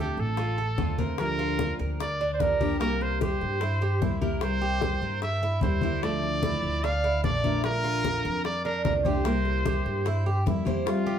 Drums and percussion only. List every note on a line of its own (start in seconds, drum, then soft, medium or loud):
0.17 high bongo soft
0.37 high bongo medium
0.37 high conga soft
0.58 high bongo soft
0.58 high conga soft
0.78 high bongo soft
0.78 low bongo medium
0.78 high conga medium
0.98 high conga medium
1.18 high bongo medium
1.18 high conga soft
1.39 high bongo soft
1.39 high conga soft
1.59 high bongo medium
1.59 high conga medium
1.79 high bongo soft
1.79 high conga soft
2.00 high bongo medium
2.00 high conga soft
2.20 high bongo soft
2.20 high conga soft
2.40 high bongo soft
2.40 low bongo medium
2.40 high conga medium
2.61 high conga medium
2.81 high bongo medium
2.81 high conga soft
3.01 high bongo soft
3.01 high conga soft
3.21 high bongo medium
3.21 high conga medium
3.41 high bongo soft
3.61 high bongo medium
3.61 high conga soft
3.81 high bongo soft
3.81 high conga soft
4.02 high bongo soft
4.02 low bongo medium
4.02 high conga medium
4.22 high conga medium
4.41 high bongo medium
4.41 high conga soft
4.61 high bongo soft
4.61 high conga soft
4.81 high bongo medium
4.81 high conga medium
5.01 high bongo soft
5.01 high conga soft
5.22 high bongo medium
5.22 high conga soft
5.42 high bongo soft
5.42 high conga soft
5.61 high bongo soft
5.61 low bongo medium
5.61 high conga medium
5.81 high conga medium
6.03 high bongo medium
6.03 high conga soft
6.22 high bongo soft
6.22 high conga soft
6.43 high bongo medium
6.43 high conga medium
6.63 high bongo soft
6.84 high bongo medium
6.84 high conga soft
7.04 high bongo soft
7.04 high conga soft
7.24 high bongo soft
7.24 low bongo medium
7.24 high conga medium
7.44 high conga medium
7.64 high bongo medium
7.64 high conga soft
7.85 high bongo soft
7.85 high conga soft
8.04 high bongo medium
8.04 high conga medium
8.24 high bongo soft
8.24 high conga soft
8.45 high bongo medium
8.45 high conga soft
8.65 high bongo soft
8.65 high conga soft
8.85 high bongo soft
8.85 low bongo medium
8.85 high conga medium
9.05 high conga medium
9.25 high bongo medium
9.25 high conga soft
9.45 high bongo soft
9.45 high conga soft
9.66 high bongo medium
9.66 high conga medium
9.86 high bongo soft
10.06 high bongo medium
10.06 high conga soft
10.26 high bongo soft
10.26 high conga soft
10.47 high bongo soft
10.47 low bongo medium
10.47 high conga medium
10.67 high conga medium
10.87 high bongo medium
10.87 high conga soft
11.06 high bongo soft
11.06 high conga soft